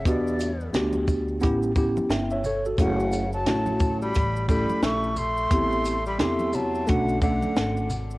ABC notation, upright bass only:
X:1
M:4/4
L:1/16
Q:"Swing 16ths" 1/4=88
K:Amix
V:1 name="Upright bass" clef=bass
E,,4 D,,4 A,,,3 z G,,,4 | F,,,4 A,,,4 A,,,3 z ^A,,,4 | A,,,4 E,,4 B,,,3 z ^G,,,4 |]